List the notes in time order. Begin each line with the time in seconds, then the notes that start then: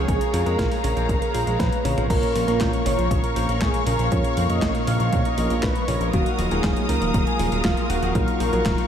Already playing: G#4 C#5
0.08 A#1 C#3 G#4 F5 A#5, kick, closed hi-hat
0.21 closed hi-hat
0.34 F2 F3, open hi-hat
0.46 F2 G#3 A#4, closed hi-hat
0.59 A#1 F3, kick, snare, closed hi-hat
0.72 snare, open hi-hat
0.84 A#1 C#3 A#4, open hi-hat
0.97 A#1 F3, closed hi-hat
1.09 A#1 C#3, kick, closed hi-hat
1.22 A#4, closed hi-hat
1.34 A#1 F3, open hi-hat
1.47 A#1 G#3, closed hi-hat
1.59 A#1 F3 B4, kick, snare, closed hi-hat
1.72 closed hi-hat
1.85 A#1 C#3 C#5, open hi-hat, high tom
1.97 A#1 F3, closed hi-hat, mid tom
2.10 A#1 A#2 C#3 A#3 C#4 F4 A#4 C#5 F5 C#6, kick, closed hi-hat, crash
2.23 closed hi-hat
2.35 A#1 F3, open hi-hat
2.48 A#1 A#2 A#3 C#4 F4 A#4, closed hi-hat
2.60 A#1 F3, kick, snare, clap, closed hi-hat
2.73 closed hi-hat
2.86 G#1 C#3 C#5, open hi-hat
2.98 A#1 F3, closed hi-hat
3.11 A#1 C#3, kick, closed hi-hat
3.23 A#4, closed hi-hat
3.36 A#1 F3, open hi-hat
3.49 A#1 A#3, closed hi-hat
3.61 A#1 F3 G#4, kick, snare, clap, closed hi-hat
3.74 closed hi-hat
3.87 A#1 C#3 A#4, open hi-hat
3.99 A#1 F3, closed hi-hat
4.12 F2 A#2 C#3 A#3 C#4 F4 A#4 C#5, kick, closed hi-hat
4.24 closed hi-hat
4.37 F2 F3, open hi-hat
4.50 F2 A#2 A#3 C#4 F4 A#4 D#5, closed hi-hat
4.62 A#1 F3, kick, snare, clap, closed hi-hat
4.75 snare, closed hi-hat
4.87 A#1 C#3 F5, open hi-hat
5.00 A#1 F3, closed hi-hat
5.13 A#1 C#3, kick, closed hi-hat
5.25 D#5, closed hi-hat
5.38 A#1 A#2 F3 A#3 C#4 F4 A#4, open hi-hat
5.50 A#1 A#3, closed hi-hat
5.63 A#1 F3 B4, kick, snare, clap, closed hi-hat
5.75 closed hi-hat
5.88 A#1 C#3 C#5, open hi-hat
6.00 A#1 F3, closed hi-hat
6.13 D#1 D#3 F#3 A#3 D#4 F#4 F5 D#6, kick, closed hi-hat
6.26 closed hi-hat
6.38 D#1 F3, open hi-hat
6.51 D#1 F#3 A#3 D#4 F4 G#4, closed hi-hat
6.64 D#1 F3, kick, snare, clap, closed hi-hat
6.77 closed hi-hat
6.89 C#2 D#3 A#4, open hi-hat
7.01 D#1 F3, closed hi-hat
7.14 D#1 D#3, kick, closed hi-hat
7.27 G#4, closed hi-hat
7.39 D#1 F3, open hi-hat
7.52 D#1 F#3, closed hi-hat
7.65 D#1 F3 F4, kick, snare, clap, closed hi-hat
7.77 closed hi-hat
7.90 D#1 D#3 F#4, open hi-hat
8.02 D#1 F3, closed hi-hat
8.15 A#1 D#3 F#3 A#3 D#4 F4 A#4 C#6, kick, closed hi-hat
8.28 closed hi-hat
8.40 A#1 F3, open hi-hat
8.53 A#1 F#3 A#3 D#4 F4 A#4, closed hi-hat
8.65 D#1 F3, kick, snare, clap, closed hi-hat
8.78 snare, closed hi-hat